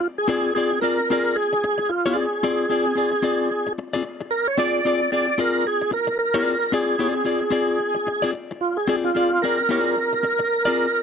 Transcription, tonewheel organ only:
0.00 0.08 F4 medium
0.18 0.28 G#4 medium
0.29 0.54 G#4 medium
0.55 0.80 G#4 loud
0.81 1.37 A#4 loud
1.36 1.91 G#4 loud
1.89 2.17 F4 medium
2.15 3.73 G#4 medium
4.31 4.47 A#4 loud
4.48 4.58 C#5 loud
4.58 5.11 D5 loud
5.12 5.39 D5 loud
5.40 5.67 A#4 loud
5.67 5.91 G#4 loud
5.93 6.18 A#4 loud
6.19 6.74 A#4 loud
6.74 8.31 G#4 medium
8.61 8.78 F4 medium
8.77 8.88 G#4 medium
8.89 8.96 G#4 medium
9.04 9.43 F4 loud
9.42 11.03 A#4 loud

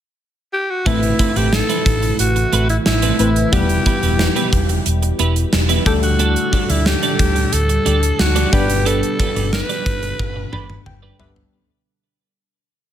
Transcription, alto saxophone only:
0.53 0.72 G4 medium
0.70 0.88 F#4 medium
0.87 1.38 E4 medium
1.37 1.55 G4 medium
1.54 2.19 A4 loud
2.20 2.66 F#4 medium
2.70 2.77 E4 medium
2.87 3.55 E4 medium
3.53 4.86 G4 medium
5.87 5.94 G4 medium
6.03 6.71 F#4 medium
6.70 6.88 E4 medium
6.86 7.55 G4 medium
7.53 8.21 A4 medium
8.20 8.55 F#4 medium
8.53 8.88 G4 medium
8.87 9.53 A4 loud
9.53 10.82 B4 loud

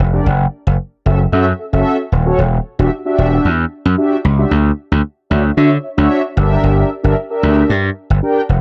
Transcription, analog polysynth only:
0.13 0.26 D4 medium
0.13 0.26 G4 medium
0.13 0.26 A#4 medium
0.13 0.26 D5 medium
1.05 1.18 C#4 medium
1.05 1.19 F#4 medium
1.05 1.19 A4 medium
1.05 1.19 E5 medium
1.32 1.45 C#4 loud
1.32 1.45 F#4 medium
1.32 1.45 A4 medium
1.32 1.45 E5 loud
1.58 1.65 A4 medium
1.58 1.66 E5 loud
1.72 1.97 C#4 medium
1.72 1.97 F#4 medium
1.72 1.97 A4 medium
1.72 1.97 E5 loud
2.26 2.38 C#4 medium
2.26 2.38 F#4 medium
2.26 2.39 A4 loud
2.26 2.39 C#5 loud
2.79 2.90 D4 loud
2.79 2.91 F#4 loud
2.79 2.91 G4 medium
2.79 2.91 E5 loud
3.05 3.47 D4 medium
3.05 3.47 F#4 medium
3.05 3.47 G4 medium
3.05 3.47 E5 medium
3.97 4.16 D4 medium
3.97 4.16 F#4 medium
3.97 4.16 G4 medium
3.97 4.17 E5 medium
4.38 4.51 D4 medium
4.38 4.51 F#4 medium
4.38 4.51 G4 medium
4.38 4.51 E5 medium
5.30 5.43 D4 medium
5.30 5.43 F#4 medium
5.30 5.43 C#5 medium
5.30 5.44 E5 medium
5.57 5.70 D4 medium
5.57 5.70 F#4 medium
5.57 5.70 C#5 medium
5.57 5.70 E5 loud
5.83 5.90 C#5 medium
5.83 5.90 E5 loud
5.97 6.21 D4 medium
5.97 6.22 F#4 medium
5.97 6.22 C#5 medium
5.97 6.22 E5 loud
6.36 6.90 D4 medium
6.36 6.90 G4 medium
6.36 6.90 A#4 medium
6.36 6.90 E5 loud
7.03 7.15 D4 loud
7.03 7.15 G4 medium
7.03 7.15 A#4 medium
7.03 7.15 E5 loud
7.30 7.72 D4 medium
7.30 7.72 G4 medium
7.30 7.72 A#4 medium
7.30 7.72 E5 medium
8.22 8.41 D4 medium
8.22 8.41 G4 medium
8.22 8.41 A#4 medium
8.22 8.42 G5 loud

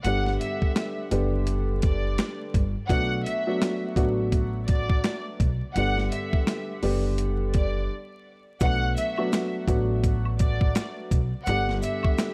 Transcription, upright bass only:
0.04 0.36 G1 loud
1.11 2.14 F#1 medium
2.54 2.74 G1 loud
2.90 3.22 B1 loud
3.96 5.00 A1 medium
5.40 5.59 B1 medium
5.76 6.08 G1 loud
6.83 7.86 F#1 medium
8.61 8.93 B1 loud
9.68 10.71 A1 medium
11.11 11.31 B1 medium
11.47 11.79 G1 loud

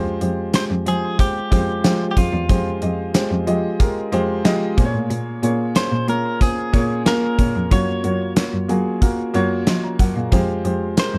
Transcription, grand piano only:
0.21 0.41 G#3 medium
0.21 0.41 F4 medium
0.21 0.41 G4 medium
0.21 0.41 C5 medium
0.53 0.73 G#3 medium
0.53 0.74 F4 medium
0.53 0.74 G4 medium
0.53 0.74 C5 medium
0.86 1.06 G#3 medium
0.86 1.06 F4 medium
0.86 1.06 G4 medium
0.86 1.07 C5 medium
1.18 1.38 G#3 medium
1.18 1.39 F4 medium
1.18 1.39 G4 medium
1.18 1.39 C5 medium
1.51 1.71 G#3 medium
1.51 1.71 F4 medium
1.51 1.71 G4 medium
1.51 1.72 C5 medium
1.84 2.04 G#3 medium
1.84 2.04 F4 medium
1.84 2.04 G4 medium
1.84 2.04 C5 loud
2.16 2.36 G#3 medium
2.16 2.37 F4 medium
2.16 2.37 G4 medium
2.16 2.37 C5 medium
2.49 2.69 G#3 medium
2.49 2.69 F4 medium
2.49 2.69 G4 medium
2.49 2.70 C5 medium
2.81 3.02 G#3 medium
2.81 3.02 F4 medium
2.81 3.02 G4 medium
2.81 3.02 D#5 medium
3.14 3.34 G#3 medium
3.14 3.34 F4 medium
3.14 3.35 G4 medium
3.14 3.35 C5 medium
3.47 3.67 G#3 medium
3.47 3.67 F4 medium
3.47 3.67 G4 medium
3.47 3.67 D#5 medium
3.79 4.00 G#3 medium
3.79 4.00 F4 medium
3.79 4.00 G4 medium
3.79 4.00 A#4 medium
4.12 4.32 G#3 loud
4.12 4.32 F4 medium
4.12 4.32 G4 loud
4.12 4.33 C5 loud
4.45 4.65 G#3 loud
4.45 4.65 F4 loud
4.45 4.65 G4 loud
4.45 4.65 D#5 loud
4.77 5.72 A#2 medium
4.77 5.30 A#3 medium
4.77 5.30 F4 medium
4.77 5.30 G#4 medium
4.77 4.85 C5 medium
4.85 5.34 C#5 loud
5.42 5.63 A#3 medium
5.42 5.63 F4 medium
5.42 5.63 G#4 medium
5.42 5.63 C#5 medium
5.75 5.95 A#3 medium
5.75 5.95 F4 medium
5.75 5.95 G#4 medium
5.75 5.96 C#5 medium
6.08 6.28 A#3 medium
6.08 6.28 F4 medium
6.08 6.28 G#4 medium
6.08 6.28 C#5 medium
6.40 6.60 A#3 medium
6.40 6.60 F4 medium
6.40 6.61 G#4 medium
6.40 6.61 C5 medium
6.73 6.93 A#3 medium
6.73 6.93 F4 medium
6.73 6.93 G#4 medium
6.73 6.93 C#5 loud
7.05 7.26 A#3 medium
7.05 7.26 F4 medium
7.05 7.26 G#4 medium
7.05 7.26 A#4 loud
7.38 7.58 A#3 medium
7.38 7.58 F4 medium
7.38 7.59 G#4 medium
7.38 7.59 C#5 medium
7.71 7.91 A#3 medium
7.71 7.91 F4 medium
7.71 7.91 F#4 medium
7.71 7.91 C#5 medium
8.03 8.23 A#3 medium
8.03 8.24 F4 medium
8.03 8.24 F#4 medium
8.03 8.24 C#5 medium
8.36 8.56 A#3 medium
8.36 8.56 F4 medium
8.36 8.56 F#4 medium
8.36 8.57 C#5 medium
8.69 8.89 A#3 medium
8.69 8.89 F4 medium
8.69 8.89 F#4 medium
8.69 8.89 G#4 medium
9.01 9.21 A#3 medium
9.01 9.22 F4 medium
9.01 9.22 F#4 medium
9.01 9.22 A#4 medium
9.34 9.54 A#3 loud
9.34 9.54 F4 medium
9.34 9.54 F#4 loud
9.34 9.54 C#5 loud
9.67 9.83 D#5 soft
9.67 9.83 C6 medium
9.83 9.99 C#5 medium
9.83 9.99 A#5 medium
10.00 10.15 A#4 medium
10.00 10.15 F#5 medium
10.16 10.47 G#4 soft
10.16 10.47 F5 medium
10.32 10.52 G#3 loud
10.32 10.52 F4 loud
10.32 10.52 G4 loud
10.32 10.52 C5 loud
10.64 10.84 G#3 medium
10.64 10.84 F4 medium
10.64 10.85 G4 medium
10.64 10.85 C5 medium
10.97 11.17 G#3 medium
10.97 11.17 F4 medium
10.97 11.17 G4 medium
10.97 11.17 A#4 medium

